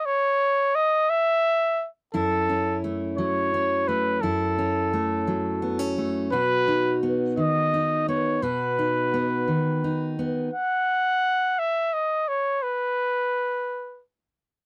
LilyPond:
<<
  \new Staff \with { instrumentName = "Trumpet" } { \time 6/8 \key b \mixolydian \tempo 4. = 57 cis''4 dis''8 e''4 r8 | a'4 r8 cis''4 b'8 | a'2~ a'8 r8 | b'4 r8 dis''4 cis''8 |
b'2~ b'8 r8 | fis''4. e''8 dis''8 cis''8 | b'2 r4 | }
  \new Staff \with { instrumentName = "Steel-string acoustic guitar" } { \time 6/8 \key b \mixolydian << { r2. | e'8 cis'8 a4 cis'8 a8 | e'8 cis'8 a4 b16 cis'16 a8 | fis'8 dis'8 b4 dis'8 b8 |
fis'8 dis'8 b4 dis'8 b8 | r2. | r2. | } \\ { r2. | fis,4. fis4. | fis,4. fis4. | b,4. dis4. |
b,4. dis4. | r2. | r2. | } >> }
>>